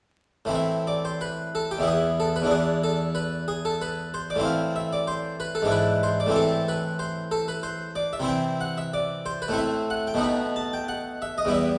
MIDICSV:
0, 0, Header, 1, 2, 480
1, 0, Start_track
1, 0, Tempo, 661521
1, 384, Time_signature, 3, 2, 24, 8
1, 1343, Tempo, 642398
1, 6623, Tempo, 651466
1, 8732, End_track
2, 0, Start_track
2, 0, Title_t, "Harpsichord"
2, 0, Program_c, 0, 6
2, 329, Note_on_c, 0, 45, 57
2, 341, Note_on_c, 0, 52, 50
2, 356, Note_on_c, 0, 60, 48
2, 368, Note_on_c, 0, 64, 47
2, 398, Note_on_c, 0, 76, 87
2, 599, Note_off_c, 0, 76, 0
2, 634, Note_on_c, 0, 74, 75
2, 753, Note_off_c, 0, 74, 0
2, 762, Note_on_c, 0, 72, 72
2, 876, Note_off_c, 0, 72, 0
2, 879, Note_on_c, 0, 71, 73
2, 1078, Note_off_c, 0, 71, 0
2, 1124, Note_on_c, 0, 69, 82
2, 1234, Note_off_c, 0, 69, 0
2, 1242, Note_on_c, 0, 67, 77
2, 1287, Note_off_c, 0, 45, 0
2, 1292, Note_off_c, 0, 52, 0
2, 1294, Note_on_c, 0, 40, 60
2, 1300, Note_off_c, 0, 60, 0
2, 1304, Note_on_c, 0, 52, 50
2, 1306, Note_off_c, 0, 64, 0
2, 1320, Note_on_c, 0, 59, 49
2, 1328, Note_on_c, 0, 64, 51
2, 1351, Note_off_c, 0, 67, 0
2, 1361, Note_on_c, 0, 68, 77
2, 1593, Note_off_c, 0, 68, 0
2, 1603, Note_on_c, 0, 69, 78
2, 1714, Note_off_c, 0, 69, 0
2, 1723, Note_on_c, 0, 71, 78
2, 1760, Note_off_c, 0, 40, 0
2, 1769, Note_on_c, 0, 40, 60
2, 1773, Note_off_c, 0, 52, 0
2, 1782, Note_on_c, 0, 52, 49
2, 1796, Note_on_c, 0, 62, 48
2, 1797, Note_off_c, 0, 64, 0
2, 1799, Note_off_c, 0, 59, 0
2, 1806, Note_on_c, 0, 64, 51
2, 1835, Note_off_c, 0, 71, 0
2, 1836, Note_on_c, 0, 68, 85
2, 2036, Note_off_c, 0, 68, 0
2, 2079, Note_on_c, 0, 69, 82
2, 2312, Note_on_c, 0, 71, 83
2, 2314, Note_off_c, 0, 69, 0
2, 2517, Note_off_c, 0, 71, 0
2, 2560, Note_on_c, 0, 68, 79
2, 2677, Note_off_c, 0, 68, 0
2, 2688, Note_on_c, 0, 69, 77
2, 2801, Note_off_c, 0, 69, 0
2, 2810, Note_on_c, 0, 71, 85
2, 3008, Note_off_c, 0, 71, 0
2, 3054, Note_on_c, 0, 72, 74
2, 3163, Note_off_c, 0, 72, 0
2, 3175, Note_on_c, 0, 74, 82
2, 3214, Note_off_c, 0, 40, 0
2, 3215, Note_on_c, 0, 45, 63
2, 3221, Note_off_c, 0, 52, 0
2, 3228, Note_off_c, 0, 62, 0
2, 3232, Note_on_c, 0, 52, 50
2, 3233, Note_off_c, 0, 64, 0
2, 3244, Note_on_c, 0, 60, 53
2, 3256, Note_on_c, 0, 64, 52
2, 3283, Note_off_c, 0, 74, 0
2, 3287, Note_on_c, 0, 77, 98
2, 3483, Note_off_c, 0, 77, 0
2, 3515, Note_on_c, 0, 76, 79
2, 3631, Note_off_c, 0, 76, 0
2, 3641, Note_on_c, 0, 74, 80
2, 3751, Note_on_c, 0, 72, 84
2, 3754, Note_off_c, 0, 74, 0
2, 3954, Note_off_c, 0, 72, 0
2, 3994, Note_on_c, 0, 71, 94
2, 4107, Note_on_c, 0, 69, 82
2, 4110, Note_off_c, 0, 71, 0
2, 4161, Note_on_c, 0, 44, 68
2, 4167, Note_off_c, 0, 52, 0
2, 4168, Note_off_c, 0, 45, 0
2, 4176, Note_on_c, 0, 52, 55
2, 4184, Note_off_c, 0, 60, 0
2, 4184, Note_on_c, 0, 62, 53
2, 4189, Note_off_c, 0, 64, 0
2, 4201, Note_on_c, 0, 64, 55
2, 4226, Note_off_c, 0, 69, 0
2, 4228, Note_on_c, 0, 71, 88
2, 4430, Note_off_c, 0, 71, 0
2, 4467, Note_on_c, 0, 72, 83
2, 4586, Note_off_c, 0, 72, 0
2, 4593, Note_on_c, 0, 74, 90
2, 4641, Note_on_c, 0, 45, 64
2, 4648, Note_off_c, 0, 52, 0
2, 4656, Note_off_c, 0, 44, 0
2, 4657, Note_on_c, 0, 52, 57
2, 4668, Note_off_c, 0, 62, 0
2, 4670, Note_off_c, 0, 64, 0
2, 4670, Note_on_c, 0, 60, 56
2, 4679, Note_on_c, 0, 64, 56
2, 4708, Note_off_c, 0, 74, 0
2, 4711, Note_on_c, 0, 69, 100
2, 4947, Note_off_c, 0, 69, 0
2, 4954, Note_on_c, 0, 71, 85
2, 5153, Note_off_c, 0, 71, 0
2, 5185, Note_on_c, 0, 72, 85
2, 5422, Note_off_c, 0, 72, 0
2, 5425, Note_on_c, 0, 69, 97
2, 5543, Note_off_c, 0, 69, 0
2, 5550, Note_on_c, 0, 71, 89
2, 5662, Note_on_c, 0, 72, 97
2, 5666, Note_off_c, 0, 71, 0
2, 5866, Note_off_c, 0, 72, 0
2, 5905, Note_on_c, 0, 74, 91
2, 6023, Note_off_c, 0, 74, 0
2, 6034, Note_on_c, 0, 76, 97
2, 6080, Note_off_c, 0, 45, 0
2, 6084, Note_on_c, 0, 48, 70
2, 6088, Note_off_c, 0, 52, 0
2, 6094, Note_off_c, 0, 60, 0
2, 6096, Note_on_c, 0, 52, 61
2, 6099, Note_off_c, 0, 64, 0
2, 6110, Note_on_c, 0, 60, 55
2, 6123, Note_on_c, 0, 64, 60
2, 6147, Note_off_c, 0, 76, 0
2, 6152, Note_on_c, 0, 79, 107
2, 6351, Note_off_c, 0, 79, 0
2, 6391, Note_on_c, 0, 78, 100
2, 6506, Note_off_c, 0, 78, 0
2, 6517, Note_on_c, 0, 76, 91
2, 6630, Note_off_c, 0, 76, 0
2, 6636, Note_on_c, 0, 74, 99
2, 6870, Note_off_c, 0, 74, 0
2, 6873, Note_on_c, 0, 72, 98
2, 6989, Note_off_c, 0, 72, 0
2, 6993, Note_on_c, 0, 71, 91
2, 7041, Note_on_c, 0, 45, 70
2, 7047, Note_off_c, 0, 48, 0
2, 7053, Note_off_c, 0, 52, 0
2, 7054, Note_on_c, 0, 57, 59
2, 7060, Note_off_c, 0, 60, 0
2, 7066, Note_off_c, 0, 64, 0
2, 7067, Note_on_c, 0, 60, 60
2, 7079, Note_on_c, 0, 64, 54
2, 7109, Note_off_c, 0, 71, 0
2, 7109, Note_on_c, 0, 76, 102
2, 7347, Note_off_c, 0, 76, 0
2, 7350, Note_on_c, 0, 78, 91
2, 7467, Note_off_c, 0, 78, 0
2, 7475, Note_on_c, 0, 79, 95
2, 7525, Note_on_c, 0, 47, 72
2, 7530, Note_off_c, 0, 57, 0
2, 7538, Note_off_c, 0, 45, 0
2, 7539, Note_on_c, 0, 57, 62
2, 7551, Note_on_c, 0, 59, 58
2, 7552, Note_off_c, 0, 60, 0
2, 7558, Note_off_c, 0, 64, 0
2, 7566, Note_on_c, 0, 63, 59
2, 7591, Note_off_c, 0, 79, 0
2, 7592, Note_on_c, 0, 83, 112
2, 7829, Note_off_c, 0, 83, 0
2, 7834, Note_on_c, 0, 81, 105
2, 7950, Note_off_c, 0, 81, 0
2, 7961, Note_on_c, 0, 79, 97
2, 8072, Note_on_c, 0, 78, 102
2, 8073, Note_off_c, 0, 79, 0
2, 8307, Note_off_c, 0, 78, 0
2, 8319, Note_on_c, 0, 76, 101
2, 8431, Note_off_c, 0, 76, 0
2, 8436, Note_on_c, 0, 75, 92
2, 8483, Note_off_c, 0, 47, 0
2, 8490, Note_off_c, 0, 57, 0
2, 8490, Note_on_c, 0, 40, 71
2, 8495, Note_off_c, 0, 59, 0
2, 8502, Note_on_c, 0, 55, 56
2, 8503, Note_off_c, 0, 63, 0
2, 8514, Note_on_c, 0, 59, 59
2, 8527, Note_on_c, 0, 64, 53
2, 8549, Note_off_c, 0, 75, 0
2, 8556, Note_on_c, 0, 76, 96
2, 8732, Note_off_c, 0, 40, 0
2, 8732, Note_off_c, 0, 55, 0
2, 8732, Note_off_c, 0, 59, 0
2, 8732, Note_off_c, 0, 64, 0
2, 8732, Note_off_c, 0, 76, 0
2, 8732, End_track
0, 0, End_of_file